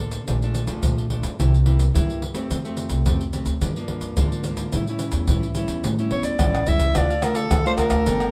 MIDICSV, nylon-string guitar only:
0, 0, Header, 1, 2, 480
1, 0, Start_track
1, 0, Key_signature, -1, "minor"
1, 0, Tempo, 556586
1, 237, Time_signature, 4, 2, 24, 8
1, 7167, End_track
2, 0, Start_track
2, 0, Title_t, "Nylon-string guitar"
2, 0, Program_c, 0, 24
2, 0, Note_on_c, 0, 50, 50
2, 0, Note_on_c, 0, 58, 43
2, 0, Note_on_c, 0, 62, 49
2, 0, Note_on_c, 0, 69, 51
2, 214, Note_off_c, 0, 58, 0
2, 214, Note_off_c, 0, 62, 0
2, 216, Note_off_c, 0, 50, 0
2, 217, Note_off_c, 0, 69, 0
2, 247, Note_on_c, 0, 46, 46
2, 247, Note_on_c, 0, 53, 43
2, 249, Note_on_c, 0, 57, 48
2, 252, Note_on_c, 0, 62, 49
2, 313, Note_off_c, 0, 53, 0
2, 316, Note_off_c, 0, 57, 0
2, 316, Note_off_c, 0, 62, 0
2, 369, Note_on_c, 0, 53, 55
2, 375, Note_on_c, 0, 57, 50
2, 379, Note_on_c, 0, 62, 57
2, 565, Note_off_c, 0, 53, 0
2, 568, Note_off_c, 0, 57, 0
2, 571, Note_off_c, 0, 62, 0
2, 578, Note_on_c, 0, 53, 51
2, 585, Note_on_c, 0, 57, 50
2, 585, Note_on_c, 0, 62, 46
2, 699, Note_off_c, 0, 46, 0
2, 720, Note_on_c, 0, 41, 47
2, 911, Note_off_c, 0, 53, 0
2, 912, Note_off_c, 0, 57, 0
2, 914, Note_off_c, 0, 62, 0
2, 954, Note_on_c, 0, 53, 50
2, 961, Note_on_c, 0, 57, 47
2, 965, Note_on_c, 0, 62, 51
2, 1111, Note_off_c, 0, 53, 0
2, 1116, Note_off_c, 0, 57, 0
2, 1116, Note_off_c, 0, 62, 0
2, 1176, Note_off_c, 0, 41, 0
2, 1199, Note_on_c, 0, 48, 43
2, 1201, Note_on_c, 0, 58, 47
2, 1205, Note_on_c, 0, 67, 43
2, 1206, Note_on_c, 0, 64, 43
2, 1341, Note_off_c, 0, 58, 0
2, 1343, Note_off_c, 0, 64, 0
2, 1344, Note_off_c, 0, 67, 0
2, 1429, Note_on_c, 0, 58, 49
2, 1432, Note_on_c, 0, 64, 51
2, 1437, Note_on_c, 0, 67, 52
2, 1576, Note_off_c, 0, 58, 0
2, 1578, Note_off_c, 0, 64, 0
2, 1580, Note_off_c, 0, 67, 0
2, 1657, Note_off_c, 0, 48, 0
2, 1672, Note_on_c, 0, 43, 44
2, 1677, Note_on_c, 0, 64, 53
2, 1678, Note_on_c, 0, 58, 46
2, 1683, Note_on_c, 0, 67, 55
2, 1903, Note_off_c, 0, 58, 0
2, 1904, Note_off_c, 0, 64, 0
2, 1908, Note_off_c, 0, 67, 0
2, 2020, Note_on_c, 0, 57, 51
2, 2024, Note_on_c, 0, 60, 53
2, 2029, Note_on_c, 0, 67, 56
2, 2134, Note_off_c, 0, 43, 0
2, 2159, Note_on_c, 0, 53, 45
2, 2232, Note_off_c, 0, 57, 0
2, 2235, Note_off_c, 0, 60, 0
2, 2235, Note_off_c, 0, 67, 0
2, 2283, Note_on_c, 0, 57, 59
2, 2288, Note_on_c, 0, 60, 53
2, 2293, Note_on_c, 0, 67, 64
2, 2604, Note_off_c, 0, 57, 0
2, 2607, Note_off_c, 0, 60, 0
2, 2610, Note_off_c, 0, 67, 0
2, 2617, Note_off_c, 0, 53, 0
2, 2640, Note_on_c, 0, 48, 43
2, 2645, Note_on_c, 0, 57, 46
2, 2646, Note_on_c, 0, 60, 44
2, 2652, Note_on_c, 0, 67, 46
2, 2784, Note_off_c, 0, 57, 0
2, 2786, Note_off_c, 0, 60, 0
2, 2787, Note_off_c, 0, 67, 0
2, 2871, Note_on_c, 0, 57, 53
2, 2876, Note_on_c, 0, 60, 47
2, 2879, Note_on_c, 0, 67, 48
2, 3031, Note_off_c, 0, 57, 0
2, 3034, Note_off_c, 0, 60, 0
2, 3035, Note_off_c, 0, 67, 0
2, 3098, Note_off_c, 0, 48, 0
2, 3127, Note_on_c, 0, 53, 48
2, 3128, Note_on_c, 0, 43, 48
2, 3132, Note_on_c, 0, 58, 40
2, 3137, Note_on_c, 0, 62, 48
2, 3197, Note_off_c, 0, 53, 0
2, 3199, Note_off_c, 0, 58, 0
2, 3201, Note_off_c, 0, 62, 0
2, 3250, Note_on_c, 0, 53, 49
2, 3253, Note_on_c, 0, 58, 51
2, 3259, Note_on_c, 0, 62, 59
2, 3568, Note_off_c, 0, 53, 0
2, 3570, Note_off_c, 0, 58, 0
2, 3573, Note_off_c, 0, 62, 0
2, 3582, Note_off_c, 0, 43, 0
2, 3602, Note_on_c, 0, 50, 52
2, 3606, Note_on_c, 0, 53, 53
2, 3608, Note_on_c, 0, 58, 50
2, 3613, Note_on_c, 0, 62, 50
2, 3805, Note_off_c, 0, 53, 0
2, 3807, Note_off_c, 0, 58, 0
2, 3810, Note_off_c, 0, 62, 0
2, 3833, Note_on_c, 0, 53, 47
2, 3836, Note_on_c, 0, 58, 49
2, 3838, Note_on_c, 0, 62, 55
2, 4058, Note_off_c, 0, 50, 0
2, 4059, Note_off_c, 0, 53, 0
2, 4060, Note_off_c, 0, 58, 0
2, 4061, Note_off_c, 0, 62, 0
2, 4085, Note_on_c, 0, 45, 47
2, 4090, Note_on_c, 0, 55, 50
2, 4093, Note_on_c, 0, 61, 45
2, 4094, Note_on_c, 0, 64, 55
2, 4167, Note_off_c, 0, 55, 0
2, 4167, Note_off_c, 0, 61, 0
2, 4170, Note_off_c, 0, 64, 0
2, 4218, Note_on_c, 0, 55, 51
2, 4222, Note_on_c, 0, 61, 54
2, 4224, Note_on_c, 0, 64, 60
2, 4532, Note_off_c, 0, 55, 0
2, 4534, Note_off_c, 0, 61, 0
2, 4534, Note_off_c, 0, 64, 0
2, 4540, Note_off_c, 0, 45, 0
2, 4569, Note_on_c, 0, 52, 50
2, 4572, Note_on_c, 0, 55, 43
2, 4573, Note_on_c, 0, 61, 44
2, 4576, Note_on_c, 0, 64, 55
2, 4707, Note_off_c, 0, 55, 0
2, 4709, Note_off_c, 0, 61, 0
2, 4710, Note_off_c, 0, 64, 0
2, 4798, Note_on_c, 0, 55, 47
2, 4801, Note_on_c, 0, 61, 49
2, 4804, Note_on_c, 0, 64, 53
2, 5022, Note_off_c, 0, 52, 0
2, 5025, Note_off_c, 0, 55, 0
2, 5026, Note_off_c, 0, 61, 0
2, 5027, Note_off_c, 0, 64, 0
2, 5039, Note_on_c, 0, 45, 43
2, 5165, Note_on_c, 0, 55, 55
2, 5173, Note_on_c, 0, 61, 48
2, 5173, Note_on_c, 0, 64, 58
2, 5486, Note_off_c, 0, 55, 0
2, 5487, Note_off_c, 0, 61, 0
2, 5489, Note_off_c, 0, 64, 0
2, 5496, Note_off_c, 0, 45, 0
2, 5517, Note_on_c, 0, 52, 54
2, 5520, Note_on_c, 0, 55, 56
2, 5521, Note_on_c, 0, 61, 52
2, 5529, Note_on_c, 0, 64, 56
2, 5721, Note_off_c, 0, 55, 0
2, 5723, Note_off_c, 0, 61, 0
2, 5724, Note_off_c, 0, 64, 0
2, 5750, Note_on_c, 0, 55, 47
2, 5754, Note_on_c, 0, 61, 48
2, 5758, Note_on_c, 0, 64, 61
2, 5975, Note_off_c, 0, 52, 0
2, 5976, Note_off_c, 0, 55, 0
2, 5977, Note_off_c, 0, 61, 0
2, 5980, Note_off_c, 0, 64, 0
2, 5994, Note_on_c, 0, 50, 48
2, 5998, Note_on_c, 0, 62, 48
2, 6000, Note_on_c, 0, 57, 50
2, 6006, Note_on_c, 0, 65, 54
2, 6139, Note_off_c, 0, 57, 0
2, 6141, Note_off_c, 0, 62, 0
2, 6142, Note_off_c, 0, 65, 0
2, 6226, Note_on_c, 0, 57, 49
2, 6231, Note_on_c, 0, 62, 53
2, 6238, Note_on_c, 0, 65, 63
2, 6452, Note_off_c, 0, 50, 0
2, 6457, Note_off_c, 0, 57, 0
2, 6460, Note_off_c, 0, 62, 0
2, 6463, Note_off_c, 0, 65, 0
2, 6478, Note_on_c, 0, 45, 54
2, 6603, Note_on_c, 0, 57, 63
2, 6607, Note_on_c, 0, 65, 73
2, 6608, Note_on_c, 0, 62, 70
2, 6921, Note_off_c, 0, 57, 0
2, 6923, Note_off_c, 0, 62, 0
2, 6923, Note_off_c, 0, 65, 0
2, 6933, Note_off_c, 0, 45, 0
2, 6951, Note_on_c, 0, 55, 52
2, 6954, Note_on_c, 0, 58, 45
2, 6957, Note_on_c, 0, 62, 53
2, 6958, Note_on_c, 0, 69, 55
2, 7167, Note_off_c, 0, 55, 0
2, 7167, Note_off_c, 0, 58, 0
2, 7167, Note_off_c, 0, 62, 0
2, 7167, Note_off_c, 0, 69, 0
2, 7167, End_track
0, 0, End_of_file